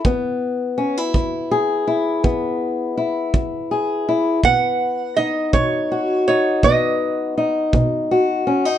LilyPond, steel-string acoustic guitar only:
\new Staff \with { instrumentName = "Steel-string acoustic guitar" } { \time 12/8 \key e \major \tempo 4. = 55 << { b4 cis'16 e'8. gis'8 e'8 b4 e'4 gis'8 e'8 | b4 dis'4 fis'8 dis'8 b4 dis'4 fis'8 cis'16 dis'16 | } \\ { e,4 r8 e,4 r8 e,4 r8 e,4 r8 | b,4 r8 b,4 r8 b,4 r8 b,4 r8 | } >> }